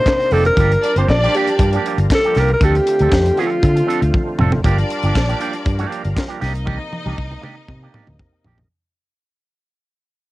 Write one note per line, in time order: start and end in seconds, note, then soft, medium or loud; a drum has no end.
0.00 0.54 C3 medium
0.00 0.54 A#3 medium
0.00 2.57 D4 medium
0.00 0.54 D#4 medium
0.00 0.34 C5 loud
0.06 kick loud
0.06 snare loud
0.06 clap medium
0.19 muted clean electric guitar stroke soft
0.19 closed hi-hat soft
0.31 0.49 F1 medium
0.31 0.47 D#3 loud
0.31 0.47 A#3 loud
0.31 0.46 D4 loud
0.31 0.46 G4 loud
0.31 0.45 A4 loud
0.31 open hi-hat medium
0.45 0.99 A#4 loud
0.45 muted clean electric guitar stroke medium
0.45 closed hi-hat medium
0.55 0.75 G1 loud
0.55 2.57 G3 medium
0.55 2.58 F4 medium
0.55 2.57 A#4 medium
0.55 kick loud
0.55 closed hi-hat loud
0.59 0.73 F3 medium
0.59 0.72 A#3 medium
0.59 0.72 D4 medium
0.59 0.72 G4 medium
0.72 muted clean electric guitar stroke soft
0.72 closed hi-hat medium
0.82 0.93 D4 medium
0.82 0.93 D5 loud
0.82 muted clean electric guitar stroke soft
0.82 closed hi-hat medium
0.96 1.04 G1 loud
0.96 1.08 F3 soft
0.96 1.08 A#3 medium
0.96 1.05 C4 medium
0.96 1.08 D4 medium
0.96 1.08 G4 medium
0.96 1.05 C5 medium
0.96 1.09 C5 loud
0.96 closed hi-hat medium
1.07 1.26 A#1 medium
1.07 1.80 D4 loud
1.07 1.80 D5 loud
1.07 1.37 D5 loud
1.07 kick loud
1.07 snare loud
1.07 clap loud
1.23 1.34 F3 medium
1.23 1.34 A#3 medium
1.23 1.33 D4 medium
1.23 1.33 G4 medium
1.23 closed hi-hat medium
1.34 1.50 F3 medium
1.34 1.49 A#3 loud
1.34 1.49 D4 loud
1.34 1.84 G4 loud
1.34 1.49 G4 loud
1.34 closed hi-hat medium
1.48 muted clean electric guitar stroke soft
1.48 closed hi-hat medium
1.59 1.77 G2 loud
1.59 muted clean electric guitar stroke soft
1.59 kick loud
1.59 closed hi-hat loud
1.73 1.85 F3 medium
1.73 1.86 A#3 medium
1.73 1.86 D4 medium
1.73 1.87 G4 medium
1.73 closed hi-hat medium
1.86 1.97 F3 medium
1.86 1.98 A#3 medium
1.86 1.98 D4 medium
1.86 1.98 G4 medium
1.86 closed hi-hat medium
1.98 2.06 G1 loud
1.98 muted clean electric guitar stroke medium
1.98 closed hi-hat soft
2.10 muted clean electric guitar stroke medium
2.10 kick loud
2.10 snare loud
2.10 clap medium
2.15 2.41 A4 loud
2.24 2.35 F3 medium
2.24 2.35 A#3 medium
2.24 2.35 D4 medium
2.24 2.35 G4 medium
2.24 closed hi-hat soft
2.35 2.54 C2 medium
2.35 2.51 F3 medium
2.35 2.51 A#3 medium
2.35 2.51 D4 loud
2.35 2.50 G4 loud
2.35 snare soft
2.35 open hi-hat medium
2.40 2.51 A#4 loud
2.48 muted clean electric guitar stroke medium
2.48 closed hi-hat medium
2.53 2.66 A#4 loud
2.60 2.79 D2 loud
2.60 4.62 D3 medium
2.60 2.76 F3 medium
2.60 4.62 A3 medium
2.60 4.62 C4 medium
2.60 2.76 C4 medium
2.60 2.75 D4 loud
2.60 4.61 F4 medium
2.60 kick loud
2.60 closed hi-hat medium
2.64 3.42 G4 loud
2.64 2.76 A4 loud
2.75 closed hi-hat soft
2.87 muted clean electric guitar stroke soft
2.87 closed hi-hat medium
2.99 3.09 D2 loud
2.99 3.12 F3 medium
2.99 3.12 C4 medium
2.99 3.11 D4 medium
2.99 3.11 A4 medium
2.99 closed hi-hat medium
3.12 3.30 F2 medium
3.12 kick loud
3.12 snare loud
3.12 clap medium
3.26 muted clean electric guitar stroke medium
3.26 closed hi-hat medium
3.37 3.58 F3 loud
3.37 3.51 C4 loud
3.37 3.50 D4 loud
3.37 4.40 F4 loud
3.37 3.50 A4 loud
3.37 open hi-hat medium
3.50 muted clean electric guitar stroke medium
3.50 closed hi-hat medium
3.63 3.81 D3 loud
3.63 muted clean electric guitar stroke soft
3.63 kick loud
3.63 closed hi-hat medium
3.76 muted clean electric guitar stroke soft
3.76 closed hi-hat medium
3.87 4.02 F3 medium
3.87 4.02 C4 loud
3.87 4.01 D4 loud
3.87 4.00 A4 loud
3.87 closed hi-hat medium
4.01 4.10 D2 medium
4.01 muted clean electric guitar stroke soft
4.01 closed hi-hat medium
4.14 kick loud
4.14 high tom medium
4.28 muted clean electric guitar stroke soft
4.39 4.57 F1 medium
4.39 4.54 F3 medium
4.39 4.53 C4 medium
4.39 4.53 D4 medium
4.39 4.52 A4 loud
4.39 mid tom loud
4.52 muted clean electric guitar stroke soft
4.52 floor tom loud
4.64 4.82 G1 loud
4.64 4.79 F3 medium
4.64 6.40 G3 medium
4.64 4.79 A#3 medium
4.64 6.13 D4 loud
4.64 4.79 D4 medium
4.64 6.40 F4 medium
4.64 4.78 G4 medium
4.64 6.41 A#4 medium
4.64 6.13 D5 loud
4.64 kick loud
4.64 closed hi-hat medium
4.78 muted clean electric guitar stroke soft
4.78 closed hi-hat soft
4.90 muted clean electric guitar stroke soft
4.90 closed hi-hat medium
5.03 5.12 G1 loud
5.03 5.15 F3 soft
5.03 5.15 A#3 medium
5.03 5.15 D4 medium
5.03 5.14 G4 medium
5.03 closed hi-hat medium
5.15 5.33 A#1 medium
5.15 muted clean electric guitar stroke medium
5.15 kick loud
5.15 snare loud
5.15 clap medium
5.29 5.38 F3 medium
5.29 5.39 A#3 medium
5.29 5.40 D4 medium
5.29 5.39 G4 medium
5.29 closed hi-hat soft
5.39 5.55 F3 medium
5.39 5.54 A#3 medium
5.39 5.54 D4 medium
5.39 5.53 G4 loud
5.39 closed hi-hat medium
5.53 muted clean electric guitar stroke soft
5.53 closed hi-hat medium
5.64 5.84 G2 loud
5.64 muted clean electric guitar stroke soft
5.64 kick loud
5.64 closed hi-hat medium
5.79 5.88 F3 medium
5.79 5.88 A#3 medium
5.79 5.89 D4 medium
5.79 5.89 G4 medium
5.79 closed hi-hat soft
5.89 6.02 F3 medium
5.89 6.02 A#3 medium
5.89 6.03 D4 medium
5.89 6.02 G4 medium
5.89 closed hi-hat medium
6.03 6.13 G1 medium
6.03 muted clean electric guitar stroke medium
6.03 closed hi-hat soft
6.14 muted clean electric guitar stroke soft
6.14 kick loud
6.14 clap loud
6.18 snare loud
6.28 6.39 F3 medium
6.28 6.39 A#3 medium
6.28 6.40 D4 medium
6.28 6.40 G4 medium
6.28 closed hi-hat soft
6.40 6.77 C2 medium
6.40 8.68 C3 medium
6.40 6.56 D#3 medium
6.40 6.54 A#3 medium
6.40 8.68 A#3 medium
6.40 6.54 D4 medium
6.40 8.68 D#4 medium
6.40 8.41 D#4 loud
6.40 6.53 G4 loud
6.40 8.42 D#5 loud
6.40 snare soft
6.40 open hi-hat medium
6.54 muted clean electric guitar stroke medium
6.54 closed hi-hat medium
6.66 6.82 D#3 medium
6.66 6.79 A#3 medium
6.66 6.79 D4 medium
6.66 6.78 G4 medium
6.66 kick loud
6.66 high tom medium
6.79 muted clean electric guitar stroke soft
6.92 muted clean electric guitar stroke soft
6.92 high tom medium
7.06 7.14 C2 loud
7.06 7.17 D#3 medium
7.06 7.17 A#3 medium
7.06 7.17 D4 medium
7.06 7.17 G4 medium
7.06 high tom medium
7.18 7.36 C2 medium
7.18 kick loud
7.31 muted clean electric guitar stroke soft
7.31 mid tom medium
7.41 7.58 D#3 loud
7.41 7.56 A#3 loud
7.41 7.55 D4 loud
7.41 7.55 G4 loud
7.41 mid tom medium
7.56 muted clean electric guitar stroke soft
7.68 7.87 C3 loud
7.68 muted clean electric guitar stroke soft
7.68 kick loud
7.68 mid tom medium
7.83 7.93 D#3 medium
7.83 7.94 A#3 medium
7.83 7.94 D4 medium
7.83 7.94 G4 medium
7.94 8.06 D#3 medium
7.94 8.07 A#3 medium
7.94 8.07 D4 medium
7.94 8.07 G4 medium
7.94 mid tom loud
8.07 8.16 D2 medium
8.07 mid tom medium
8.20 kick loud
8.20 floor tom loud
8.33 muted clean electric guitar stroke medium
8.45 8.63 A#1 medium
8.45 8.60 D#3 medium
8.45 8.59 A#3 medium
8.45 8.59 D4 medium
8.45 8.58 G4 loud
8.45 floor tom loud
8.58 floor tom loud